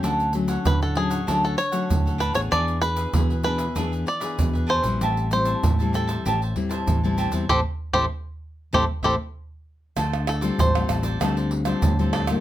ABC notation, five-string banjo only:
X:1
M:4/4
L:1/16
Q:1/4=97
K:Am
V:1 name="Five-string banjo"
z4 B A ^G3 A ^c4 B c | d2 B4 B4 d4 c2- | c2 c4 A8 z2 | [GAc] z2 [GAc] z4 [GAc] z [GAc] z4 z |
z2 A2 c6 z4 A2 |]